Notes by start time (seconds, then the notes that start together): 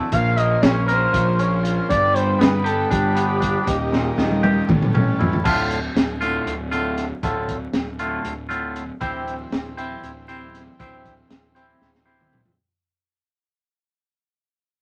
Already playing: D3 A3 E4
0.11 A#1 A#2 A#3 C#4 C5 F5, kick, closed hi-hat
0.36 A#3 D#5, closed hi-hat
0.61 A#1 C#4 C#5, snare, closed hi-hat
0.86 A#4 C5, snare, closed hi-hat
1.13 A#1 F4, kick, closed hi-hat
1.39 C#4 C#5, closed hi-hat
1.64 F4, closed hi-hat
1.88 G1 G2 G3 D4 B4 D5, kick, closed hi-hat
2.14 G3 C5, closed hi-hat
2.38 G1 B3 B4, snare, closed hi-hat
2.64 G4 A4, closed hi-hat
2.90 G1 D4 G4, kick, closed hi-hat
3.15 B3, closed hi-hat
3.40 D4, kick, closed hi-hat
3.65 D#1 D#2 D#4 A#4, kick, closed hi-hat
3.92 A#2, snare
4.18 D#1 D#3, snare
4.31 high tom
4.43 G4, high tom
4.67 A1 A2 C#4 A4, kick, mid tom
4.82 mid tom
4.94 C#4, mid tom
5.19 E4, floor tom
5.33 floor tom
5.44 D1 A2 D3 A3 F4, kick, crash
5.71 closed hi-hat
5.95 D1, snare, closed hi-hat
6.21 A2 D3 A3 F4, snare, closed hi-hat
6.46 D1, closed hi-hat
6.72 A2 D3 A3 F4, snare, closed hi-hat
6.98 snare, closed hi-hat
7.23 D1 A2 D3 A3 F4, kick, closed hi-hat
7.49 kick, closed hi-hat
7.73 D1, snare, closed hi-hat
7.99 A2 D3 A3 F4, closed hi-hat
8.25 D1, closed hi-hat
8.49 A2 D3 A3 F4, closed hi-hat
8.76 closed hi-hat
9.00 D1 E3 C4 E4 G4 C5, kick, closed hi-hat
9.27 closed hi-hat
9.52 D1, snare, closed hi-hat
9.77 C4 E4 G4 C5, closed hi-hat
10.03 D1, closed hi-hat
10.28 C4 E4 G4 C5, closed hi-hat
10.55 snare, closed hi-hat
10.79 D1 C4 E4 G4 C5, kick, closed hi-hat
11.05 kick, closed hi-hat
11.30 D1, snare, closed hi-hat
11.55 C4 E4 G4 C5, closed hi-hat
11.81 D1, snare
11.95 snare
12.05 C4 E4 G4 C5
12.20 mid tom
12.33 mid tom
12.45 floor tom